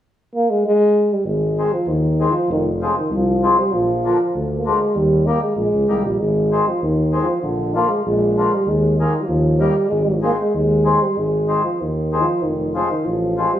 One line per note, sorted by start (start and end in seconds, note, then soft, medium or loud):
0.35 0.52 A#3 medium
0.50 0.64 G#3 medium
0.67 1.15 G#3 loud
1.13 1.27 G3 medium
1.24 1.65 G#1 medium
1.24 1.75 G#3 medium
1.58 1.71 D#3 soft
1.58 1.71 G#3 soft
1.58 1.71 C4 medium
1.74 1.90 F3 medium
1.87 2.28 D#2 medium
1.87 2.32 D#3 medium
2.19 2.33 D#3 soft
2.19 2.33 G#3 soft
2.19 2.34 C4 medium
2.30 2.50 F3 medium
2.48 2.89 F1 medium
2.48 2.65 D#3 medium
2.81 2.97 C#3 medium
2.81 2.95 F3 medium
2.81 2.95 G#3 soft
2.81 2.95 C4 medium
2.97 3.11 D#3 medium
3.11 3.51 C2 medium
3.15 3.60 F3 medium
3.43 3.56 F3 medium
3.43 3.57 G#3 medium
3.43 3.57 C4 medium
3.58 3.75 G3 medium
3.73 4.12 A#1 medium
3.73 4.38 F3 medium
4.04 4.17 D3 medium
4.04 4.18 F3 soft
4.04 4.18 A#3 medium
4.35 4.74 D2 medium
4.57 4.68 A#3 medium
4.65 4.79 D3 soft
4.65 4.79 F3 soft
4.65 4.97 G#3 medium
4.65 4.79 A#3 medium
4.95 5.35 D#2 medium
4.95 5.28 G3 medium
5.26 5.40 D#3 medium
5.26 5.40 G3 soft
5.26 5.41 A#3 medium
5.42 5.55 G#3 medium
5.56 5.67 A#1 medium
5.56 6.01 G#3 medium
5.73 5.88 C#2 medium
5.88 6.03 C2 medium
5.88 6.02 D#3 soft
5.88 6.02 G3 soft
5.88 6.03 A#3 medium
6.04 6.18 A#1 medium
6.04 6.21 G3 medium
6.20 6.60 G#1 medium
6.20 6.70 G#3 medium
6.52 6.65 D#3 soft
6.52 6.65 G#3 soft
6.52 6.65 C4 medium
6.69 6.82 F3 medium
6.82 7.22 D#2 medium
6.82 7.25 D#3 medium
7.12 7.26 D#3 medium
7.12 7.27 G#3 soft
7.12 7.27 C4 medium
7.23 7.41 F3 medium
7.42 7.83 A#1 medium
7.42 7.77 D3 medium
7.75 7.89 D3 medium
7.75 7.89 F3 soft
7.75 7.90 A#3 medium
7.75 7.89 A#3 medium
7.89 8.04 G#3 medium
8.04 8.46 A#1 medium
8.04 8.55 G#3 medium
8.37 8.51 D3 medium
8.37 8.51 F3 soft
8.37 8.52 A#3 medium
8.54 8.70 G3 medium
8.67 9.07 D#2 medium
8.67 8.98 G#3 medium
8.99 9.22 D#3 medium
8.99 9.13 D#3 medium
8.99 9.13 G#3 soft
8.99 9.14 A#3 medium
9.21 9.28 G3 medium
9.27 9.69 D#2 medium
9.27 9.61 F3 medium
9.60 9.74 D#3 medium
9.60 9.88 G3 medium
9.60 9.74 G3 soft
9.60 9.75 A#3 medium
9.89 10.32 G#1 medium
9.89 10.20 G#3 medium
10.22 10.36 D#3 medium
10.22 10.37 G#3 medium
10.22 10.30 A#3 medium
10.22 10.37 C4 medium
10.40 10.54 G#3 medium
10.54 10.95 D#2 medium
10.54 11.04 G#3 medium
10.84 10.99 D#3 medium
10.84 10.99 G#3 medium
10.84 11.00 C4 medium
11.02 11.18 G3 medium
11.17 11.58 G#1 medium
11.17 11.62 G#3 medium
11.47 11.62 D#3 soft
11.47 11.63 G#3 soft
11.47 11.63 C4 medium
11.63 11.82 F3 medium
11.81 12.22 D#2 medium
11.81 12.22 D#3 medium
12.12 12.26 D#3 medium
12.12 12.26 G#3 soft
12.12 12.26 C4 medium
12.21 12.44 F3 medium
12.42 12.84 F1 medium
12.42 12.76 D#3 medium
12.74 12.88 C#3 medium
12.74 12.88 F3 medium
12.74 12.89 G#3 soft
12.74 12.89 C4 medium
12.89 13.06 D#3 medium
13.05 13.46 A1 medium
13.05 13.38 F3 medium
13.37 13.51 F3 medium
13.37 13.51 G#3 soft
13.37 13.52 C4 medium
13.52 13.60 G3 medium